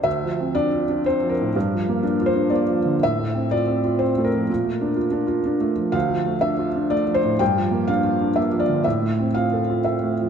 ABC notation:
X:1
M:3/4
L:1/8
Q:1/4=123
K:Dm
V:1 name="Felt piano"
e2 d2 c B- | B2 z c d2 | e2 d2 c B- | B2 z4 |
f2 e2 d c | g2 f2 e d | e2 f2 e2 |]
V:2 name="Felt piano"
(3D,, F, C (3D F D (3C F, A,, | (3G,, F, B, (3D F D (3B, F, D, | (3A,, A, C (3F C F (3C A, F, | (3B,, A, D (3F D F (3D A, F, |
(3D,, F, A, (3D F D (3A, F, A,, | (3G,, F, B, (3D F D (3B, F, D, | (3A,, A, C (3F A F (3C A, F, |]